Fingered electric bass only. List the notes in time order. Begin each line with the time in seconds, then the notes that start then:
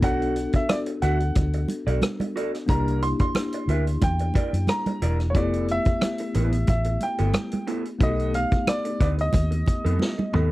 0.03 B1
0.54 muted fingered electric bass stroke
1.03 D2
1.36 D2
1.87 B1
2.69 C2
3.68 D2
4.03 E2
4.53 F#2
5.02 E1
5.35 F1
5.86 muted fingered electric bass stroke
6.35 A1
6.68 A1
7.20 G1
8.01 B1
8.52 muted fingered electric bass stroke
9.01 D2
9.34 D#2
9.85 F2
10.34 D#2